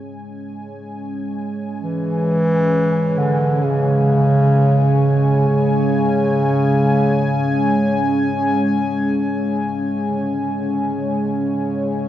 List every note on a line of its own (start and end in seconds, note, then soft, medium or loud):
0.00 12.08 G#3 medium
0.00 12.08 C#4 medium
0.00 12.08 C#5 medium
0.00 12.08 G#5 medium
1.83 3.19 E3 loud
3.18 3.66 D3 loud
3.64 5.48 C#3 loud
5.48 8.21 C#3 loud
9.16 10.09 C#3 medium
10.08 10.55 D3 medium
10.57 11.03 D3 medium
11.01 12.08 C#3 loud